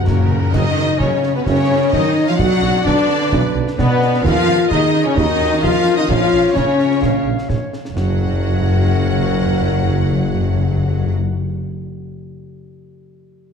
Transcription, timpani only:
0, 0, Header, 1, 2, 480
1, 0, Start_track
1, 0, Key_signature, 6, "major"
1, 0, Tempo, 464756
1, 557, Time_signature, 4, 2, 24, 8
1, 13974, End_track
2, 0, Start_track
2, 0, Title_t, "Timpani"
2, 0, Program_c, 0, 47
2, 23, Note_on_c, 0, 42, 94
2, 87, Note_off_c, 0, 42, 0
2, 99, Note_on_c, 0, 42, 104
2, 166, Note_off_c, 0, 42, 0
2, 179, Note_on_c, 0, 42, 104
2, 240, Note_off_c, 0, 42, 0
2, 252, Note_on_c, 0, 42, 96
2, 317, Note_off_c, 0, 42, 0
2, 329, Note_on_c, 0, 42, 121
2, 396, Note_off_c, 0, 42, 0
2, 408, Note_on_c, 0, 42, 103
2, 485, Note_off_c, 0, 42, 0
2, 547, Note_on_c, 0, 42, 111
2, 1233, Note_off_c, 0, 42, 0
2, 8217, Note_on_c, 0, 42, 82
2, 8291, Note_off_c, 0, 42, 0
2, 8296, Note_on_c, 0, 42, 80
2, 8370, Note_off_c, 0, 42, 0
2, 8371, Note_on_c, 0, 42, 92
2, 8443, Note_off_c, 0, 42, 0
2, 8443, Note_on_c, 0, 42, 80
2, 8517, Note_off_c, 0, 42, 0
2, 8522, Note_on_c, 0, 42, 93
2, 8597, Note_off_c, 0, 42, 0
2, 8599, Note_on_c, 0, 42, 88
2, 8668, Note_off_c, 0, 42, 0
2, 8668, Note_on_c, 0, 42, 88
2, 8742, Note_off_c, 0, 42, 0
2, 8742, Note_on_c, 0, 42, 86
2, 8813, Note_off_c, 0, 42, 0
2, 8813, Note_on_c, 0, 42, 83
2, 8886, Note_off_c, 0, 42, 0
2, 8886, Note_on_c, 0, 42, 92
2, 8960, Note_off_c, 0, 42, 0
2, 8964, Note_on_c, 0, 42, 89
2, 9039, Note_off_c, 0, 42, 0
2, 9042, Note_on_c, 0, 42, 88
2, 9117, Note_off_c, 0, 42, 0
2, 9118, Note_on_c, 0, 42, 92
2, 9183, Note_off_c, 0, 42, 0
2, 9183, Note_on_c, 0, 42, 85
2, 9249, Note_off_c, 0, 42, 0
2, 9249, Note_on_c, 0, 42, 95
2, 9324, Note_off_c, 0, 42, 0
2, 9327, Note_on_c, 0, 42, 87
2, 9402, Note_off_c, 0, 42, 0
2, 9402, Note_on_c, 0, 42, 82
2, 9477, Note_off_c, 0, 42, 0
2, 9479, Note_on_c, 0, 42, 83
2, 9553, Note_off_c, 0, 42, 0
2, 9555, Note_on_c, 0, 42, 89
2, 9629, Note_off_c, 0, 42, 0
2, 9631, Note_on_c, 0, 42, 86
2, 9699, Note_off_c, 0, 42, 0
2, 9699, Note_on_c, 0, 42, 99
2, 9770, Note_off_c, 0, 42, 0
2, 9770, Note_on_c, 0, 42, 86
2, 9841, Note_off_c, 0, 42, 0
2, 9841, Note_on_c, 0, 42, 93
2, 9913, Note_off_c, 0, 42, 0
2, 9913, Note_on_c, 0, 42, 94
2, 9986, Note_off_c, 0, 42, 0
2, 9986, Note_on_c, 0, 42, 95
2, 10061, Note_off_c, 0, 42, 0
2, 10061, Note_on_c, 0, 42, 82
2, 10135, Note_off_c, 0, 42, 0
2, 10135, Note_on_c, 0, 42, 92
2, 10207, Note_off_c, 0, 42, 0
2, 10207, Note_on_c, 0, 42, 87
2, 10281, Note_off_c, 0, 42, 0
2, 10281, Note_on_c, 0, 42, 84
2, 10352, Note_off_c, 0, 42, 0
2, 10352, Note_on_c, 0, 42, 84
2, 10427, Note_off_c, 0, 42, 0
2, 10434, Note_on_c, 0, 42, 98
2, 10507, Note_off_c, 0, 42, 0
2, 10507, Note_on_c, 0, 42, 84
2, 10581, Note_off_c, 0, 42, 0
2, 10581, Note_on_c, 0, 42, 91
2, 10656, Note_off_c, 0, 42, 0
2, 10658, Note_on_c, 0, 42, 83
2, 10732, Note_off_c, 0, 42, 0
2, 10738, Note_on_c, 0, 42, 93
2, 10813, Note_off_c, 0, 42, 0
2, 10813, Note_on_c, 0, 42, 82
2, 10885, Note_off_c, 0, 42, 0
2, 10885, Note_on_c, 0, 42, 94
2, 10960, Note_off_c, 0, 42, 0
2, 10962, Note_on_c, 0, 42, 92
2, 11033, Note_off_c, 0, 42, 0
2, 11033, Note_on_c, 0, 42, 88
2, 11106, Note_off_c, 0, 42, 0
2, 11106, Note_on_c, 0, 42, 86
2, 11180, Note_off_c, 0, 42, 0
2, 11180, Note_on_c, 0, 42, 92
2, 11252, Note_off_c, 0, 42, 0
2, 11252, Note_on_c, 0, 42, 84
2, 11327, Note_off_c, 0, 42, 0
2, 11328, Note_on_c, 0, 42, 90
2, 11403, Note_off_c, 0, 42, 0
2, 11405, Note_on_c, 0, 42, 84
2, 11479, Note_off_c, 0, 42, 0
2, 13974, End_track
0, 0, End_of_file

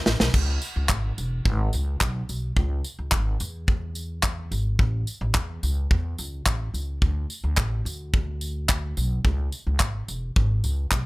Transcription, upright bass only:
0, 0, Header, 1, 2, 480
1, 0, Start_track
1, 0, Tempo, 556586
1, 291, Time_signature, 4, 2, 24, 8
1, 9537, End_track
2, 0, Start_track
2, 0, Title_t, "Upright bass"
2, 0, Program_c, 0, 32
2, 55, Note_on_c, 0, 33, 92
2, 152, Note_off_c, 0, 33, 0
2, 177, Note_on_c, 0, 35, 88
2, 273, Note_off_c, 0, 35, 0
2, 294, Note_on_c, 0, 37, 93
2, 490, Note_off_c, 0, 37, 0
2, 656, Note_on_c, 0, 37, 95
2, 753, Note_off_c, 0, 37, 0
2, 771, Note_on_c, 0, 32, 88
2, 969, Note_off_c, 0, 32, 0
2, 1018, Note_on_c, 0, 28, 80
2, 1213, Note_off_c, 0, 28, 0
2, 1254, Note_on_c, 0, 32, 102
2, 1450, Note_off_c, 0, 32, 0
2, 1500, Note_on_c, 0, 37, 96
2, 1694, Note_off_c, 0, 37, 0
2, 1734, Note_on_c, 0, 35, 93
2, 1931, Note_off_c, 0, 35, 0
2, 1978, Note_on_c, 0, 35, 85
2, 2173, Note_off_c, 0, 35, 0
2, 2213, Note_on_c, 0, 37, 108
2, 2410, Note_off_c, 0, 37, 0
2, 2576, Note_on_c, 0, 37, 87
2, 2691, Note_on_c, 0, 32, 92
2, 2704, Note_off_c, 0, 37, 0
2, 2889, Note_off_c, 0, 32, 0
2, 2936, Note_on_c, 0, 40, 92
2, 3861, Note_off_c, 0, 40, 0
2, 3893, Note_on_c, 0, 32, 86
2, 4091, Note_off_c, 0, 32, 0
2, 4133, Note_on_c, 0, 33, 109
2, 4331, Note_off_c, 0, 33, 0
2, 4493, Note_on_c, 0, 33, 99
2, 4592, Note_off_c, 0, 33, 0
2, 4613, Note_on_c, 0, 40, 91
2, 4811, Note_off_c, 0, 40, 0
2, 4855, Note_on_c, 0, 37, 90
2, 5052, Note_off_c, 0, 37, 0
2, 5096, Note_on_c, 0, 40, 98
2, 5293, Note_off_c, 0, 40, 0
2, 5336, Note_on_c, 0, 37, 90
2, 5532, Note_off_c, 0, 37, 0
2, 5575, Note_on_c, 0, 33, 88
2, 5772, Note_off_c, 0, 33, 0
2, 5810, Note_on_c, 0, 37, 80
2, 6009, Note_off_c, 0, 37, 0
2, 6053, Note_on_c, 0, 38, 103
2, 6251, Note_off_c, 0, 38, 0
2, 6413, Note_on_c, 0, 38, 107
2, 6512, Note_off_c, 0, 38, 0
2, 6533, Note_on_c, 0, 33, 107
2, 6731, Note_off_c, 0, 33, 0
2, 6773, Note_on_c, 0, 38, 93
2, 7699, Note_off_c, 0, 38, 0
2, 7737, Note_on_c, 0, 35, 88
2, 7932, Note_off_c, 0, 35, 0
2, 7975, Note_on_c, 0, 37, 99
2, 8171, Note_off_c, 0, 37, 0
2, 8336, Note_on_c, 0, 37, 90
2, 8433, Note_off_c, 0, 37, 0
2, 8453, Note_on_c, 0, 32, 85
2, 8650, Note_off_c, 0, 32, 0
2, 8695, Note_on_c, 0, 28, 87
2, 8891, Note_off_c, 0, 28, 0
2, 8938, Note_on_c, 0, 32, 100
2, 9132, Note_off_c, 0, 32, 0
2, 9175, Note_on_c, 0, 37, 83
2, 9370, Note_off_c, 0, 37, 0
2, 9414, Note_on_c, 0, 35, 93
2, 9537, Note_off_c, 0, 35, 0
2, 9537, End_track
0, 0, End_of_file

